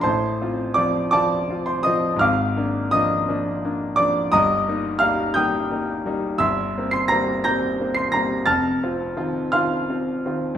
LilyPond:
<<
  \new Staff \with { instrumentName = "Grand piano" } { \time 6/8 \key f \mixolydian \tempo 4. = 57 <c'' a'' c'''>4 <d'' d'''>8 <d'' a'' d'''>8. <c'' c'''>16 <ees'' ees'''>8 | <f'' d''' f'''>4 <ees'' ees'''>4. <d'' d'''>8 | <ees'' bes'' ees'''>4 <f'' f'''>8 <g'' ees''' g'''>8 r4 | <e'' c''' e'''>8. <c''' c''''>16 <bes'' bes'''>8 <bes'' g''' bes'''>8. <c''' c''''>16 <bes'' bes'''>8 |
<a'' f''' a'''>4. <f'' c''' f'''>4. | }
  \new Staff \with { instrumentName = "Grand piano" } { \time 6/8 \key f \mixolydian <a,, a,>8 <c' f'>8 <f c' f'>8 <f c' f'>8 <c' f'>8 <f c' f'>8 | <aes,, aes,>8 <bes d'>8 <f bes d'>8 <f bes d'>8 <bes d'>8 <f bes d'>8 | <g,, g,>8 <bes ees'>8 <g bes ees'>8 <g bes ees'>8 <bes ees'>8 <g bes ees'>8 | <g,, g,>8 <bes c'>8 <g bes c'>8 <g bes c'>8 <bes c'>8 <g bes c'>8 |
<f,, f,>8 <c' f'>8 <ees c' f'>8 <ees c' f'>8 <c' f'>8 <ees c' f'>8 | }
>>